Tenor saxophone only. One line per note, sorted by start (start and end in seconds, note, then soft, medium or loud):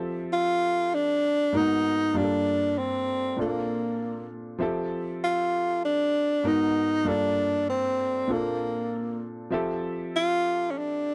0.33 0.96 F4 loud
0.94 1.58 D4 medium
1.56 2.19 D#4 medium
2.17 2.80 D4 medium
2.78 3.39 C4 medium
3.41 4.28 A#3 medium
5.24 5.80 F4 medium
5.85 6.49 D4 medium
6.47 7.09 D#4 medium
7.08 7.69 D4 medium
7.70 8.34 C4 medium
8.32 9.23 A#3 medium
10.16 10.72 F4 loud
10.71 10.80 C#4 medium
10.78 11.14 D4 medium